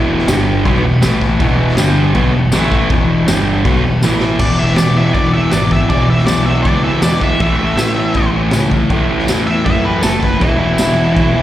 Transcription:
Already playing: picked electric bass E1, distorted electric guitar E2 B2 E3
0.18 snare
0.27 picked electric bass G1, distorted electric guitar G2 D3 G3, snare, tambourine, crash
0.65 picked electric bass B1, distorted electric guitar B2 F#3 B3, kick, crash
0.83 picked electric bass E1, distorted electric guitar E2 B2
1.01 picked electric bass A1, distorted electric guitar A2 E3 A3, snare, tambourine, crash
1.21 kick, snare
1.40 picked electric bass E1, distorted electric guitar E2 B2 E3, kick, crash
1.69 snare
1.76 picked electric bass G1, distorted electric guitar G2 D3 G3, snare, tambourine, crash
2.14 picked electric bass B1, distorted electric guitar B2 F#3 B3, kick, crash
2.34 picked electric bass E1, distorted electric guitar E2 B2
2.51 picked electric bass A1, distorted electric guitar A2 E3 A3, snare, tambourine, crash
2.72 kick, snare
2.90 picked electric bass E1, distorted electric guitar E2 B2 E3, kick, crash
3.27 picked electric bass G1, distorted electric guitar G2 D3 G3, snare, tambourine, crash
3.65 picked electric bass B1, distorted electric guitar B2 F#3 B3, kick, crash
3.84 picked electric bass E1, distorted electric guitar E2 B2
4.02 picked electric bass A1, distorted electric guitar A2 E3 A3, snare, tambourine
4.20 snare
4.39 picked electric bass E1, distorted electric guitar E2 B2, lead electric guitar D5, kick, crash
4.44 distorted electric guitar E3
4.58 distorted electric guitar B2 E3, lead electric guitar E5
4.67 snare
4.76 picked electric bass E1, distorted electric guitar E2 B2, lead electric guitar D5, snare, tambourine, crash
4.80 distorted electric guitar E3
4.96 distorted electric guitar B2 E3, lead electric guitar E5
5.14 picked electric bass E1, distorted electric guitar E2 B2 E3, lead electric guitar D5, kick, crash
5.33 distorted electric guitar B2 E3, lead electric guitar E5
5.52 picked electric bass G#1, distorted electric guitar E2 B2, lead electric guitar D5, snare, tambourine, crash
5.56 distorted electric guitar E3
5.71 distorted electric guitar B2 E3, lead electric guitar E5, kick, snare
5.89 picked electric bass E1, distorted electric guitar E2 B2 E3, lead electric guitar D5, kick, crash
6.08 distorted electric guitar B2 E3, lead electric guitar E5
6.18 snare
6.26 picked electric bass B1, distorted electric guitar E2 B2, lead electric guitar D5, snare, tambourine, crash
6.30 distorted electric guitar E3
6.46 distorted electric guitar E3, lead electric guitar E5
6.50 distorted electric guitar B2
6.63 picked electric bass C#2, distorted electric guitar E2, lead electric guitar D5, kick, crash
6.67 distorted electric guitar B2 E3
6.84 distorted electric guitar B2 E3, lead electric guitar E5
7.02 picked electric bass E2, distorted electric guitar E2 B2 E3, lead electric guitar D5, snare, tambourine, crash
7.20 distorted electric guitar E3, lead electric guitar E5, kick, snare
7.25 distorted electric guitar B2
7.39 picked electric bass A1, distorted electric guitar A2 E3 A3, lead electric guitar E5, kick, crash
7.59 distorted electric guitar E3 A3
7.76 picked electric bass A1, distorted electric guitar A2 E3 A3, snare, tambourine, crash
7.96 distorted electric guitar E3 A3
8.14 picked electric bass A1, distorted electric guitar A2 E3 A3, kick, crash
8.33 distorted electric guitar E3 A3
8.51 picked electric bass C#2, distorted electric guitar A2 E3 A3, snare, tambourine, crash
8.70 distorted electric guitar E3 A3, kick
8.90 picked electric bass A1, distorted electric guitar A2 E3 A3, kick, crash
9.08 distorted electric guitar E3 A3
9.19 snare
9.27 picked electric bass E2, distorted electric guitar A2 E3 A3, snare, tambourine, crash
9.45 distorted electric guitar E3 A3, lead electric guitar E5
9.64 picked electric bass F#2, distorted electric guitar A2 E3 A3, lead electric guitar E5, kick, crash
9.83 distorted electric guitar E3 A3, lead electric guitar B4
10.02 picked electric bass F#1, distorted electric guitar A2 E3 A3, lead electric guitar A4, snare, tambourine, crash
10.21 distorted electric guitar E3 A3, lead electric guitar B4, kick, snare
10.39 picked electric bass E1, distorted electric guitar E2 B2 E3, lead electric guitar E4, kick, crash
10.58 distorted electric guitar B2 E3, lead electric guitar E4
10.77 picked electric bass E1, distorted electric guitar E2 B2 E3, snare, tambourine, crash
10.96 distorted electric guitar B2 E3
11.15 picked electric bass E1, distorted electric guitar E2 B2 E3, kick, crash
11.34 distorted electric guitar B2 E3

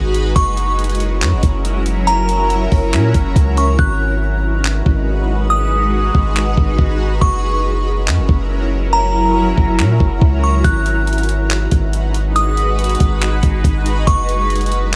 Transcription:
Already playing: 808-style bass G#1, ambient pad G#3 D#4 F#4 B4
0.14 closed hi-hat
0.36 808-style bass F#1, ambient pad F#3 C#4 E4 A#4, synth bell C#6, kick, closed hi-hat
0.57 closed hi-hat
0.79 closed hi-hat
0.84 closed hi-hat
0.89 closed hi-hat
0.95 closed hi-hat
1.00 closed hi-hat
1.21 808-style bass F#2, clap, closed hi-hat
1.32 808-style bass F#1
1.43 808-style bass F#1, kick, closed hi-hat
1.65 closed hi-hat
1.86 closed hi-hat
2.07 synth bell A#5, closed hi-hat
2.29 closed hi-hat
2.50 closed hi-hat
2.72 808-style bass F#1, kick, open hi-hat
2.93 808-style bass A#2, clap, closed hi-hat
3.14 808-style bass F#1, kick, closed hi-hat
3.36 808-style bass C#2, kick, closed hi-hat
3.57 synth bell C#6, closed hi-hat
3.79 808-style bass G#1, ambient pad G#3 D#4 F#4 B4, synth bell F#6, kick
4.65 clap
4.86 808-style bass G#1, kick
5.50 synth bell D#6
6.15 808-style bass G#1, kick
6.37 clap
6.57 808-style bass G#1, kick
6.79 808-style bass G#1, kick
7.21 808-style bass F#1, ambient pad F#3 C#4 E4 A#4, synth bell C#6, kick
8.07 808-style bass F#2, clap
8.18 808-style bass F#1
8.29 808-style bass F#1, kick
8.93 synth bell A#5
9.58 808-style bass F#1, kick
9.79 808-style bass A#2, clap
10.00 808-style bass F#1, kick
10.21 808-style bass C#2, kick
10.44 synth bell C#6
10.64 808-style bass G#1, ambient pad G#3 D#4 F#4 B4, synth bell F#6, kick, closed hi-hat
10.86 closed hi-hat
11.07 closed hi-hat
11.13 closed hi-hat
11.18 closed hi-hat
11.23 closed hi-hat
11.29 closed hi-hat
11.50 clap, closed hi-hat
11.71 808-style bass G#1, kick, closed hi-hat
11.93 closed hi-hat
12.14 closed hi-hat
12.36 synth bell D#6, closed hi-hat
12.57 closed hi-hat
12.79 closed hi-hat
12.84 closed hi-hat
12.89 closed hi-hat
12.95 closed hi-hat
13.00 808-style bass G#1, kick, closed hi-hat
13.21 clap, closed hi-hat
13.43 808-style bass G#1, kick, closed hi-hat
13.64 808-style bass G#1, kick, closed hi-hat
13.86 closed hi-hat
14.07 808-style bass F#1, ambient pad F#3 C#4 E4 A#4, synth bell C#6, kick, closed hi-hat
14.29 closed hi-hat
14.50 closed hi-hat
14.56 closed hi-hat
14.61 closed hi-hat
14.66 closed hi-hat
14.72 closed hi-hat

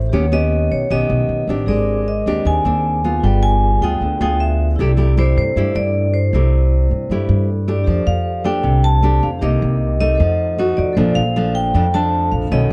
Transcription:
Already playing: upright bass A1, nylon-string guitar A2, vibraphone A4 C5 E5
0.10 nylon-string guitar D#3 B3 C#4 G4, vibraphone G4 B4
0.14 upright bass D#2, vibraphone C#5 F#5
0.32 nylon-string guitar B3 C#4 G4, vibraphone D#5
0.72 upright bass B1, vibraphone C#5
0.90 upright bass B1, nylon-string guitar D#3 B3 C#4 G4, vibraphone D#5
1.10 upright bass B1
1.29 upright bass B1
1.47 upright bass A1, nylon-string guitar C4 D4 G4
1.66 upright bass G#1, nylon-string guitar G#3, vibraphone G#4 A#4 D5
1.71 vibraphone C5 D6
2.08 vibraphone D#5
2.26 upright bass D#2, nylon-string guitar C4 D4 G4
2.45 upright bass D#2, nylon-string guitar D#3, vibraphone G#5
2.65 upright bass D#2, nylon-string guitar C4 D4
3.04 nylon-string guitar B3 F4
3.20 upright bass G1, nylon-string guitar G3, vibraphone F4 G#4 G5
3.25 vibraphone B4 D5
3.43 vibraphone G#5
3.81 upright bass D2, nylon-string guitar B3 F4 G#4, vibraphone G5
4.00 upright bass D2, nylon-string guitar D3
4.21 upright bass D2, nylon-string guitar B3 F4 G#4, vibraphone G5
4.40 vibraphone E5
4.76 upright bass C2, nylon-string guitar C3, vibraphone E4 G4 A4
4.80 nylon-string guitar A3 E4 G4, vibraphone D5
4.97 nylon-string guitar A3 E4 G4
5.17 nylon-string guitar A3 E4 G4, vibraphone C5
5.37 upright bass G2, vibraphone C5
5.56 upright bass G2, nylon-string guitar G2 A3 E4 G4
5.75 upright bass G2, vibraphone D5
6.14 vibraphone C5
6.33 upright bass C2, nylon-string guitar C3 A3 E4 G4
6.91 upright bass G2
7.10 upright bass G2, nylon-string guitar G2 A3 E4 G4
7.29 upright bass G2
7.68 nylon-string guitar A3 D4 G4, vibraphone D5
7.84 upright bass F2, nylon-string guitar F3, vibraphone G4 A4
7.88 vibraphone C5 D5
8.07 upright bass F2, vibraphone F5
8.44 nylon-string guitar A3 D4 G4, vibraphone G5
8.63 upright bass C2, nylon-string guitar C3
8.84 vibraphone A5
9.02 nylon-string guitar A3 D4 G4
9.21 upright bass F2, vibraphone G4 A4 C5 D5 F5
9.39 upright bass C2, nylon-string guitar C3 A#3 D#4 G4, vibraphone G4 A#4 D#5
9.43 vibraphone D#5 D6
9.62 upright bass C2
10.00 nylon-string guitar A3 D#4, vibraphone D#5
10.15 vibraphone A4 C5
10.20 upright bass F2, nylon-string guitar F3, vibraphone D#5 F#5
10.58 nylon-string guitar A3 D#4 F#4
10.77 upright bass F2, vibraphone D5
10.93 upright bass A#1, nylon-string guitar A#2 F3, vibraphone A4 C5 D5
10.97 nylon-string guitar A3 D4, vibraphone F5
11.15 upright bass A#1, vibraphone F5
11.36 nylon-string guitar F3 A3 D4
11.55 vibraphone G5
11.74 upright bass F2, nylon-string guitar F2 F3 A3 D4
11.92 nylon-string guitar F3 A3 D4, vibraphone A4 C5 D5 F5 A5
12.32 upright bass A#1, vibraphone F5
12.47 nylon-string guitar B2, vibraphone A4 C#5 D#5
12.51 upright bass B1, nylon-string guitar D#3 A3 C#4, vibraphone D#5 F#5

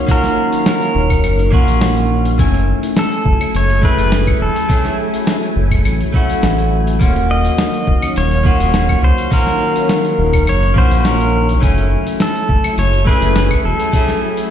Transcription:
Already playing: string machine D#3 F#3 C#4 F5, pedal steel guitar C#5
0.07 clean electric guitar A#3 C#4 F4 F#4, kick, open hi-hat, cabasa
0.11 pedal steel guitar A#4
0.24 snare, open hi-hat, cabasa
0.52 open hi-hat, cabasa
0.66 pedal steel guitar A#4, snare, open hi-hat, cabasa
0.81 open hi-hat, cabasa
0.95 analog synth bass D#1
1.10 kick, open hi-hat, cabasa, claves
1.24 analog synth bass F#1, open hi-hat, cabasa, claves
1.39 open hi-hat, cabasa
1.51 analog synth bass A#1, clean electric guitar A#3 C#4 F4 F#4, kick
1.68 analog synth bass A#1, open hi-hat, cabasa
1.81 snare, open hi-hat, cabasa
1.97 open hi-hat, cabasa
2.25 open hi-hat, cabasa
2.38 analog synth bass F#1, string machine F#3 A3 E4 G#5, clean electric guitar A3 C#4 E4 G#5, kick, open hi-hat, cabasa
2.54 open hi-hat, cabasa
2.83 open hi-hat, cabasa
2.97 pedal steel guitar A4, snare, open hi-hat, cabasa
3.12 open hi-hat, cabasa
3.25 analog synth bass F#1, kick
3.41 open hi-hat, cabasa, claves
3.54 analog synth bass F#1, pedal steel guitar C#5, open hi-hat, cabasa
3.70 open hi-hat, cabasa
3.81 clean electric guitar A3 C#4 E4 G#4, pedal steel guitar B4, kick
3.98 analog synth bass F#1, open hi-hat, cabasa
4.12 snare, open hi-hat, cabasa
4.27 kick, open hi-hat, cabasa, claves
4.41 analog synth bass E1, pedal steel guitar A4
4.56 open hi-hat, cabasa
4.69 clean electric guitar A3 C#4 E4 G#4, kick, open hi-hat, cabasa
4.85 snare, open hi-hat, cabasa
5.14 open hi-hat, cabasa
5.27 snare, open hi-hat, cabasa
5.43 open hi-hat, cabasa
5.56 analog synth bass F#1
5.71 kick, open hi-hat, cabasa, claves
5.85 analog synth bass A1, open hi-hat, cabasa, claves
6.01 open hi-hat, cabasa
6.12 clean electric guitar A3 C#4 E4 F#4, kick
6.30 open hi-hat, cabasa
6.43 analog synth bass A1, snare, open hi-hat, cabasa
6.58 open hi-hat, cabasa
6.87 open hi-hat, cabasa
6.99 analog synth bass D#1, string machine D#3 F#3 C#4 F5, clean electric guitar A#3 C#4 F4 F#4, kick, open hi-hat, cabasa
7.16 open hi-hat, cabasa
7.31 pedal steel guitar D#5
7.45 open hi-hat, cabasa
7.58 snare, open hi-hat, cabasa
7.74 open hi-hat, cabasa
7.87 analog synth bass D#1, kick
8.02 open hi-hat, cabasa, claves
8.16 analog synth bass D#1, pedal steel guitar C#5, open hi-hat, cabasa
8.31 open hi-hat, cabasa
8.44 clean electric guitar A#3 C#4 F4 F#4, kick
8.60 analog synth bass D#1, open hi-hat, cabasa
8.74 snare, open hi-hat, cabasa
8.89 kick, open hi-hat, cabasa, claves
9.03 analog synth bass C#2, pedal steel guitar C5
9.18 open hi-hat, cabasa
9.31 clean electric guitar A#3 C#4 F4 F#4, pedal steel guitar A#4, kick, open hi-hat, cabasa
9.47 snare, open hi-hat, cabasa
9.76 open hi-hat, cabasa
9.89 snare, open hi-hat, cabasa
10.05 open hi-hat, cabasa
10.18 analog synth bass D#1
10.33 kick, open hi-hat, cabasa, claves
10.47 analog synth bass F#1, pedal steel guitar C#5, open hi-hat, cabasa, claves
10.62 open hi-hat, cabasa
10.74 analog synth bass A#1, clean electric guitar A#3 C#4 F4 F#4, kick
10.78 pedal steel guitar C5
10.91 analog synth bass A#1, open hi-hat, cabasa
11.00 pedal steel guitar C5
11.05 pedal steel guitar A#4, snare, open hi-hat, cabasa
11.20 open hi-hat, cabasa
11.49 open hi-hat, cabasa
11.61 analog synth bass F#1, string machine F#3 A3 E4 G#5, clean electric guitar A3 C#4 E4 G#5, kick, open hi-hat, cabasa
11.78 open hi-hat, cabasa
12.07 open hi-hat, cabasa
12.20 pedal steel guitar A4, snare, open hi-hat, cabasa
12.35 open hi-hat, cabasa
12.49 analog synth bass F#1, kick
12.64 open hi-hat, cabasa, claves
12.78 analog synth bass F#1, pedal steel guitar C#5, open hi-hat, cabasa
12.93 open hi-hat, cabasa
13.05 clean electric guitar A3 C#4 E4 G#4, pedal steel guitar B4, kick
13.22 analog synth bass F#1, open hi-hat, cabasa
13.36 snare, open hi-hat, cabasa
13.51 kick, open hi-hat, cabasa, claves
13.64 analog synth bass E1, pedal steel guitar A4
13.80 open hi-hat, cabasa
13.92 clean electric guitar A3 C#4 E4 G#4, kick, open hi-hat, cabasa
14.08 snare, open hi-hat, cabasa
14.37 open hi-hat, cabasa

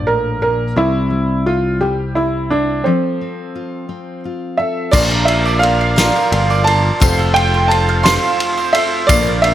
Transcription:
Already playing: picked electric bass A#1, steel-string acoustic guitar F3 D4 F4
0.07 steel-string acoustic guitar A2, upright piano A#4
0.42 steel-string acoustic guitar A#2, upright piano A#4
0.76 picked electric bass C2, steel-string acoustic guitar C3 C4, upright piano E4
1.10 steel-string acoustic guitar G3
1.46 steel-string acoustic guitar C4, upright piano F4
1.81 steel-string acoustic guitar G3, upright piano G4
2.15 steel-string acoustic guitar C4, upright piano E4
2.50 upright piano D4, steel-string acoustic guitar E4
2.84 steel-string acoustic guitar F3 A4, upright piano C4
3.21 steel-string acoustic guitar C4
3.55 steel-string acoustic guitar F4
3.89 steel-string acoustic guitar C4
4.25 steel-string acoustic guitar F4
4.57 steel-string acoustic guitar A4, upright piano E5
4.91 picked electric bass A#1, grand piano A#1 A#2 F3 D4 A#4, steel-string acoustic guitar A#2 D3 F3 A#3 D4 A#4, harmonium A#3 D4 F4, mandolin F4, upright piano D5, kick, crash, tambourine
4.96 grand piano D5
5.11 mandolin A#4
5.25 mandolin F4, upright piano E5, ride
5.45 mandolin D5, tambourine
5.59 steel-string acoustic guitar F3 A#3 D4, mandolin F4, upright piano F5
5.63 steel-string acoustic guitar A#4, ride
5.81 mandolin F5
5.96 steel-string acoustic guitar A#2 D3 F3 A#3 D4 A#4, mandolin F4, snare, ride, tambourine
6.16 mandolin A#4, tambourine
6.32 picked electric bass G1, mandolin F4, ride
6.50 mandolin D5, tambourine
6.64 steel-string acoustic guitar F3 A#3 D4 A#4, mandolin F4, upright piano A5, ride
6.99 grand piano F1 F2 F3 C4 A4 C5, picked electric bass F1, steel-string acoustic guitar F3 C4 F4 A4, harmonium A3 C4 F4, mandolin F4, kick, ride, tambourine
7.19 mandolin A4
7.34 mandolin F4, upright piano G5, ride
7.54 mandolin C5
7.68 steel-string acoustic guitar F3 C4, mandolin F4, upright piano A5, ride
7.72 steel-string acoustic guitar F4 A4
7.89 mandolin F5
8.03 steel-string acoustic guitar F3 C4 F4 A4, mandolin F4, upright piano C6, snare, ride, tambourine
8.23 mandolin A4, tambourine
8.40 mandolin F4, ride
8.58 mandolin C5, tambourine
8.73 steel-string acoustic guitar C4 F4 A4, mandolin F4, upright piano E5, ride
9.07 grand piano A#1 A#2 F3 D4 A#4, picked electric bass A#1, steel-string acoustic guitar A#2 D3 F3 A#3, harmonium A#3 D4, mandolin F4, upright piano D5, kick, ride, tambourine
9.11 steel-string acoustic guitar D4 A#4, grand piano D5
9.27 mandolin A#4
9.42 mandolin F4, upright piano E5, ride

